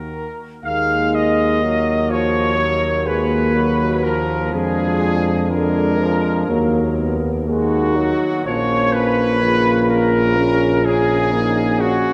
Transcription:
Already playing: tuba D#2, trombone D#3, french horn section A#3, trumpet section A#4
0.64 tuba D#2, trombone G#3, euphonium A#3, french horn section D#4, trumpet section F5
1.14 trumpet section D#5
1.62 trombone F#3, french horn section F#4
2.10 trombone F3, trumpet section C#5
2.57 trombone F#3, euphonium A#3, french horn section F#4
3.06 trombone G#3, trumpet section B4
3.55 trombone F#3
4.04 trombone F3, trumpet section A#4
4.52 tuba F2, euphonium G#3, french horn section D4, trumpet section G#4
5.50 trombone D3, euphonium G#3, french horn section D4, trumpet section A#4
6.00 trombone F3
6.49 tuba D#2, trombone F#3, euphonium A#3, french horn section D#4
6.98 euphonium B3
7.47 trombone G#3, euphonium A#3, french horn section D#4, trumpet section F#4
7.96 trombone F#3
8.45 tuba A#1, trombone F3, euphonium A#3, french horn section C#4, trumpet section C#5
8.93 trumpet section B4
9.42 trombone C#3, french horn section F4
9.89 trumpet section A#4
10.37 euphonium C#4
10.84 euphonium C#4, trumpet section G#4
11.33 euphonium A#3, french horn section D#4
11.78 french horn section C#4, trumpet section F#4

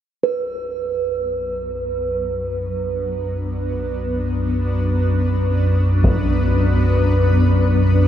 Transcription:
0.21 synth drone B1 F#2, ambient pad F#3, singing bowl B4
0.42 ambient pad B3
2.03 ambient pad D4
3.95 ambient pad B4
6.04 taiko

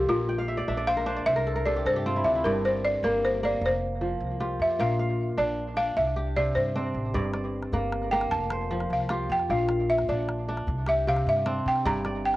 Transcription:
Already playing: kora F3 A#3 F4 G4 C5
0.09 upright bass A#1, kora A#2, balafon F4
0.29 kora G5
0.39 kora F5
0.48 kora E5
0.57 kora D5
0.68 upright bass A#1, kora D4 E5
0.77 kora D5
0.87 kora C5, balafon F5
0.97 kora A#4
1.06 kora D4 C5
1.17 kora D5
1.26 upright bass C2, kora C5, balafon E5
1.36 kora A#4
1.47 kora A4
1.56 kora A#4
1.66 kora C3 A4, balafon D5
1.76 kora G4
1.85 upright bass G2, kora A4, balafon C5
1.96 kora G4
2.06 kora C4 F4
2.16 kora E4
2.24 upright bass D2, kora D4, balafon E5
2.35 kora E4
2.44 upright bass G1, kora G2 D5, balafon A#4
2.65 balafon C5, kora D5
2.85 balafon D5
3.03 upright bass G1, kora A#3, balafon A#4
3.25 balafon C5
3.43 kora A#3, balafon D5
3.61 upright bass F1
3.66 balafon C5
4.01 kora F3
4.20 upright bass C2
4.40 kora F4 G4
4.59 upright bass F2, balafon E5
4.79 upright bass A#1, kora A#2 F5, balafon F5
4.99 kora F5
5.38 upright bass A#1, kora D4, balafon D5
5.77 kora D4, balafon F5
5.97 upright bass C2, balafon E5
6.16 kora G4
6.36 kora C3, balafon D5
6.55 upright bass G2, balafon C5
6.75 kora C4 D4
6.94 upright bass A1
7.14 upright bass G1, kora G2 D5, calabash thump
7.24 calabash click
7.33 kora D5, calabash click
7.62 calabash click
7.72 upright bass G1, kora A#3, calabash thump
7.92 calabash click
8.02 calabash click
8.11 kora A#3, balafon G5
8.21 calabash click
8.31 upright bass F1, balafon A5, calabash thump
8.50 kora C5, calabash click
8.71 kora F3
8.80 calabash click
8.90 upright bass C2, balafon F5, calabash thump, calabash click
9.00 calabash click
9.09 kora F4 G4, calabash click
9.30 upright bass F2, balafon G5
9.39 calabash click
9.48 upright bass A#1, kora A#2 F5, balafon F5, calabash thump
9.59 calabash click
9.69 kora F5, calabash click
9.90 balafon E5
9.98 calabash click
10.08 upright bass A#1, kora D4, balafon D5, calabash thump
10.29 calabash click
10.48 kora D4
10.57 calabash click
10.67 upright bass C2, calabash thump
10.86 kora G4, balafon E5, calabash click
11.07 kora C3, balafon F5
11.16 calabash click
11.26 upright bass G2, balafon E5, calabash thump, calabash click
11.37 calabash click
11.46 kora C4 D4, calabash click
11.66 upright bass C3, balafon G5
11.76 calabash click
11.85 upright bass G1, kora G2 D5, balafon A#5, calabash thump
11.95 calabash click
12.05 kora D5, calabash click
12.25 balafon G5

